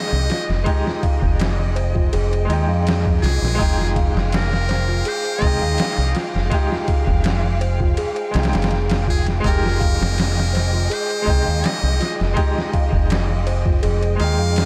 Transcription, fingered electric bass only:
0.12 C2
0.49 F1
1.23 F1
2.13 F1
2.49 D#2
2.69 F2
3.23 C2
3.42 A#1
3.60 F1
4.15 F1
5.42 C2
5.62 D#2
5.98 C2
6.35 F1
7.08 F1
8.35 C2
8.53 F1
9.45 F1
10.01 F1
11.27 C2
11.48 D#2
11.83 C2
12.21 F1
12.93 F1
13.84 F1
14.20 D#2
14.39 F2

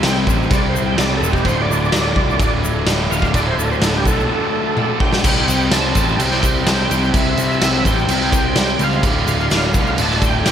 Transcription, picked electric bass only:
0.03 C2
0.27 A1
0.50 C2
0.97 C2
1.21 E1
1.44 D1
1.68 D1
1.91 D1
2.16 C2
2.39 D1
2.85 D1
3.10 D1
3.34 D1
3.57 D1
3.80 D1
4.05 B1
5.24 C2
5.48 C2
5.70 C2
5.95 A1
6.19 C2
6.66 C2
6.90 C2
7.13 C2
7.37 C2
7.62 C2
7.84 A1
8.08 C2
8.55 C2
8.79 C#2
9.03 D1
9.26 D1
9.50 D1
9.74 C2
9.98 D1
10.45 D1

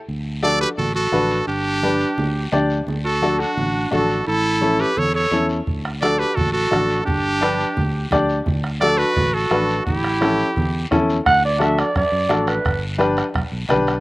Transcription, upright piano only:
0.43 D4 F#4 A4
1.12 D4 F#4 B4
1.83 D4 G4 B4
2.52 D4 G4 D5
3.22 D4 F#4 A4
3.91 D4 F#4 A4
4.61 C#4 E4 A4
5.31 C#4 E4 A4
6.02 D4 F#4 A4
6.71 D4 F#4 A4
7.41 D4 G4 B4
8.12 D4 G4 D5
8.82 D4 F#4 A4
9.50 D4 F#4 B4
10.21 C#4 E4 A4
10.91 C#4 E4 A4
11.59 D4 F#4 A4
12.29 D4 F#4 A4
12.98 D4 G4 B4
13.69 D4 G4 B4

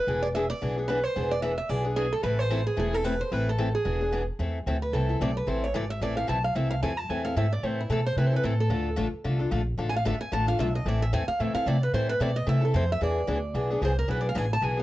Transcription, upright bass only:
0.07 E1
0.62 B1
1.16 E1
1.69 B1
2.24 A1
2.77 E1
3.31 A1
3.85 E1
4.39 E2
4.66 D2
4.92 C2
5.20 B1
5.47 A1
5.74 G#1
6.01 A1
6.29 B1
6.56 C2
6.83 F2
7.09 E2
7.36 G#2
7.63 A2
7.89 B2
8.16 C3
8.44 A2
8.69 D2
8.97 A1
9.13 muted upright bass stroke
9.24 C2
9.51 A#1
9.78 A1
10.05 G#1
10.32 A1
10.59 B1
10.86 A1
11.13 E2
11.28 muted upright bass stroke
11.40 A2
11.55 muted upright bass stroke
11.66 C3
11.93 A2
12.20 B2
12.47 C3
12.74 F2
13.01 E2
13.28 D2
13.54 B1
13.81 C2
14.09 B1
14.36 A1
14.62 B1

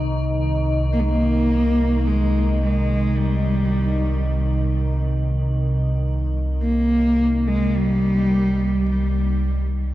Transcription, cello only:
0.93 A#3
0.99 G#3
1.09 A#3
2.07 G#3
2.63 G#3
3.18 G3
6.62 A#3
7.48 G#3
7.77 G3
8.91 G3

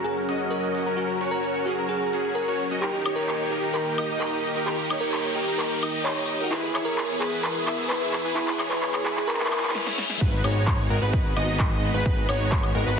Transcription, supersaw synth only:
Already playing: C#4 F#4 A#4
0.29 C#4 F#4 D#5
0.86 C#4 F#4 A#4
0.98 C#4 F#4 A#4
1.21 C#4 F#4 C#5
1.67 C#4 F#4 G#4
1.79 C#4 F#4 A#4
2.13 C#4 F#4 G#4
2.48 C#4 F#4 C#5
2.71 C#4 F#4 D#5
2.83 D#4 G4 A#4
3.06 D#4 G4 C#5
3.52 D#4 G4 A#4
3.63 D#4 G4 A#4
3.98 D#4 G4 D#5
4.56 D#4 G4 A#4
4.67 D#4 G4 A#4
4.90 D#4 G4 C#5
5.37 D#4 G4 A#4
5.48 D#4 G4 A#4
5.83 D#4 G4 D#5
6.40 D#4 G4 A#4
6.52 E4 G#4 B4
6.75 E4 G#4 C#5
7.21 E4 G#4 B4
7.33 E4 G#4 B4
7.67 E4 G#4 E5
8.25 E4 G#4 B4
8.36 E4 G#4 B4
8.59 E4 G#4 C#5
9.05 E4 G#4 B4
9.17 E4 G#4 B4
9.52 E4 G#4 B4
9.86 E4 G#4 C#5
10.10 E4 G#4 E5
10.21 G#3 B3 D#4 F#4 B4
10.44 G#3 B3 D#4 F#4 C#5
10.90 G#3 B3 D#4 F#4 A#4
11.02 G#3 B3 D#4 F#4 B4
11.36 G#3 B3 D#4 F#4 D#5
11.94 G#3 B3 D#4 F#4 B4
12.06 G#3 B3 D#4 F#4 B4
12.29 G#3 B3 D#4 F#4 C#5
12.75 G#3 B3 D#4 F#4 A#4
12.86 G#3 B3 D#4 F#4 B4

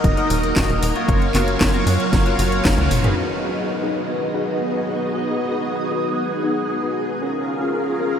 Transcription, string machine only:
Already playing: F#3 A#3 D#4 A#4 D#5
1.08 F#3 C#4 C#5 F5
3.17 B3 D#4 F#4 G#4 D#5
7.34 C#4 F4 A#4 F5

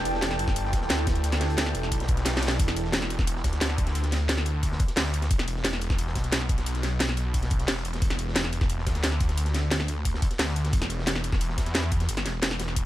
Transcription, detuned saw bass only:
Already playing: E1
0.39 G1
0.90 D2
1.75 E1
1.92 B1
2.26 B1
2.60 E1
3.44 D2
4.97 D2
5.31 E1
6.15 B1
6.32 B1
7.68 E1
8.02 E1
8.87 D2
10.39 D2
10.73 E1
11.58 E2
12.09 G1
12.26 E1
12.60 E1

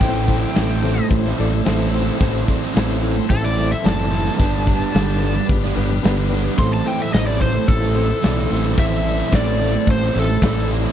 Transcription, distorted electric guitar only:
0.00 A2 E3 C4 E4 A4
0.27 E3 C4 E4 A4
0.54 A2 E3 C4 E4 A4
0.69 C4 E4 A4
0.82 muted distorted electric guitar stroke
0.94 C4 E4 A4
1.36 E3 C4 E4 A4
1.49 C4 E4 A4
1.63 A2 E3 C4 E4 A4
1.77 C4 E4 A4
1.90 E3 C4 E4 A4
2.05 C4 E4 A4
2.19 A2 E3 C4 E4 A4
2.46 E3 C4 E4 A4
2.74 A2 E3 C4 E4 A4
2.87 C4 E4 A4
3.02 muted distorted electric guitar stroke
3.15 C4 E4 A4
3.56 E3 C4 E4 A4
3.69 C4 E4 A4
3.83 A2 E3 C4 E4 A4
3.97 C4 E4 A4
4.11 E3 C4 E4 A4
4.24 C4 E4 A4
4.36 G2 D3 G3 B3 D4 G4
4.64 G3 B3 D4 G4
4.92 G2 D3 G3 B3 D4 G4
5.06 G3 B3 D4 G4
5.21 muted distorted electric guitar stroke
5.33 G3 B3 D4 G4
5.75 G3 B3 D4 G4
5.88 G3 B3 D4 G4
6.01 G2 D3 G3 B3 D4 G4
6.15 G3 B3 D4 G4
6.29 G3 B3 D4 G4
6.43 G3 B3 D4 G4
6.57 A2 E3 C4 E4 A4
6.84 E3 C4 E4 A4
7.12 A2 E3 C4 E4 A4
7.26 C4 E4 A4
7.40 muted distorted electric guitar stroke
7.54 C4 E4 A4
7.95 E3 C4 E4 A4
8.09 C4 E4 A4
8.22 A2 E3 C4 E4 A4
8.35 C4 E4 A4
8.48 E3 C4 E4 A4
8.63 C4 E4 A4
8.77 A2 E3 C4 E4 A4
9.04 E3 C4 E4 A4
9.31 A2 E3 C4 E4 A4
9.46 C4 E4 A4
9.59 muted distorted electric guitar stroke
9.72 C4 E4 A4
10.12 E3 C4 E4 A4
10.27 C4 E4 A4
10.41 A2 E3 C4 E4 A4
10.55 C4 E4 A4
10.68 E3 C4 E4 A4
10.82 C4 E4 A4

